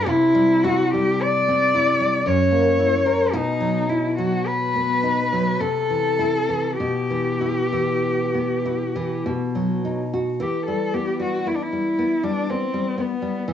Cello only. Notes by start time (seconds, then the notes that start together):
0.08 E4
0.64 F#4
0.94 G4
1.22 D5
2.26 C#5
3.34 D#4
3.89 E4
4.18 F#4
4.47 B4
5.60 A4
6.79 G4
10.42 G4
10.66 A4
10.94 G4
11.21 F#4
11.47 E4
11.56 D4
11.62 E4
12.24 D4
12.50 C4
13.00 B3